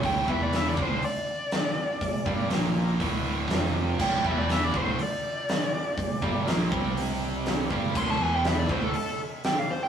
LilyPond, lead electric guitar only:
\new Staff \with { instrumentName = "Lead electric guitar" } { \time 4/4 \key d \minor \tempo 4 = 121 g''8 e''16 d''16 e''16 d''16 c''8 d''2~ | d''4 r2. | g''8 e''16 d''16 e''16 d''16 c''8 d''2~ | d''4 r2. |
c'''16 a''16 gis''16 g''16 e''16 d''16 c''16 a'16 a'8 r8 g''16 f''16 c''16 g''16 | }